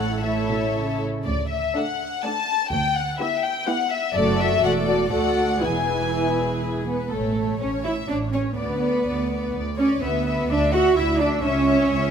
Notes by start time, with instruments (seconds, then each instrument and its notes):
Already playing: double bass section A1, cello section A2, viola section A3 E4, violin section A4 C#5 F#5
0.22 cello section A2, viola section A3 E4, violin section A4 C#5 E5
0.49 cello section B2
0.74 cello section C#3
1.24 cello section D2, double bass section D2, violin section D5
1.49 violin section E5
1.75 viola section A3 D4, violin section A4 D5 F#5
2.24 viola section A3 D4, violin section A4 D5 A5
2.71 cello section D2, double bass section D2, violin section G5
2.96 violin section F#5
3.19 viola section B3 E4, violin section G4 B4 E5
3.41 violin section G5
3.67 viola section B3 E4, violin section G4 B4 F#5
3.91 violin section E5
4.14 double bass section F#1, cello section F#2, viola section A3 F#4, violin section A4 D5
4.39 violin section E5
4.61 double bass section E1, cello section E2, viola section A3 F#4, violin section A4 D5 F#5
4.87 violin section D5
5.10 cello section D2, double bass section D2, viola section A3 F#4, violin section A4 D5 F#5
5.61 double bass section E1, cello section E2, viola section E3 E4, violin section G#4 B4 G#5
6.87 cello section B3, viola section B3, violin section B4
7.12 double bass section A1, viola section A3, cello section A3, violin section A4 C#5
7.38 violin section C#5
7.61 double bass section A1, cello section C#4, viola section C#4, violin section C#5
7.84 viola section E4, cello section E4, violin section C#5 E5
8.08 double bass section A1, viola section D4, cello section D4, violin section C#5 D5
8.33 cello section C#4, viola section C#4, violin section C#5
8.56 double bass section D2, viola section B3, cello section B3, violin section B4 D5
8.80 violin section D5
9.05 double bass section D2, violin section D5
9.30 violin section D5
9.55 double bass section D2, violin section D5
9.78 cello section C#4, viola section C#4, violin section C#5 D5
10.02 double bass section D2, cello section B3, viola section B3, violin section B4 E5
10.26 violin section E5
10.49 double bass section D2, cello section D4, viola section D4, violin section D5 E5
10.73 cello section F#4, viola section F#4, violin section E5 F#5
10.96 double bass section D2, cello section E4, viola section E4, violin section E5
11.20 cello section D4, viola section D4, violin section D5 E5
11.43 double bass section C#2, cello section C#4, viola section C#4, violin section C#5 E5
11.68 violin section E5
11.91 double bass section C#2, violin section E5